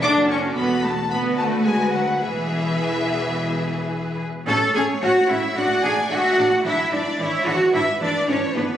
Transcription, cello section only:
X:1
M:4/4
L:1/8
Q:1/4=110
K:Emix
V:1 name="Cello section"
F,,2 E,,2 D,,4 | E,,6- E,, z | A G F E F G F2 | E D E F E D C B, |]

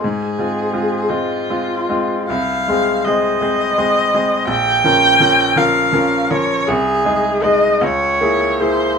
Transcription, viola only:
X:1
M:6/8
L:1/8
Q:3/8=54
K:Cphr
V:1 name="Viola"
A3 F3 | [K:Ab] f2 e4 | g3 f2 d | A2 e d2 c |]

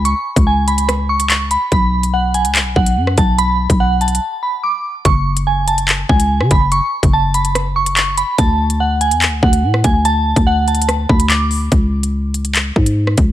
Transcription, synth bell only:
X:1
M:4/4
L:1/8
Q:1/4=144
K:Dlyd
V:1 name="Synth bell"
c'2 g b2 c' c' b | b2 f g z f2 a | b2 f a2 b d'2 | c'2 g a z g2 b |
c'2 a b2 c' c' b | a2 f g z f2 g | a2 f a2 b d'2 | z8 |]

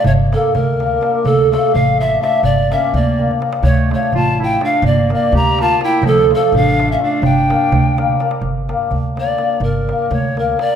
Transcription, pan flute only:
X:1
M:5/8
L:1/16
Q:1/4=125
K:none
V:1 name="Pan flute"
^c2 A2 _B6 | A2 A2 f2 e2 e2 | d2 e2 d4 z2 | ^c2 c2 a2 g2 f2 |
d2 d2 _b2 a2 g2 | A2 A2 f3 e f2 | g8 z2 | z6 d4 |
_B4 ^c2 B2 d2 |]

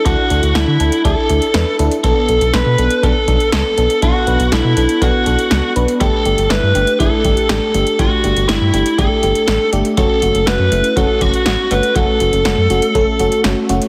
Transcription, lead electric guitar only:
X:1
M:4/4
L:1/8
Q:1/4=121
K:Bm
V:1 name="Lead electric guitar"
F2 E2 A3 z | A2 B2 A2 A2 | F2 E2 F3 z | A2 B2 A2 A2 |
F2 E2 A3 z | A2 B2 A F2 B | A6 z2 |]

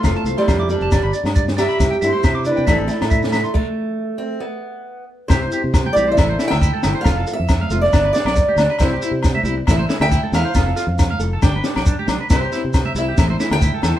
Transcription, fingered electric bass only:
X:1
M:4/4
L:1/16
Q:"Swing 16ths" 1/4=137
K:C
V:1 name="Fingered electric bass" clef=bass
F,,, z C,, z F,,3 F,,, G,,, G,,, z G,,4- G,, | C,, z G,, z C,3 C, A,,, A,,, z A,,4- A,, | z16 | C,,2 z C,3 B,,,2 A,,,2 z D,,2 z G,,, z |
F,,,2 z F,,3 F,,,2 G,,,2 z B,,,2 z D,, z | C,,2 z C,3 C,,2 A,,,2 z D,,2 z E,, z | F,,,2 z F,,3 F,,,2 G,,,2 z B,,,2 z B,,, z | C,,2 z C,3 C,,2 A,,,2 z D,,2 z E,, z |]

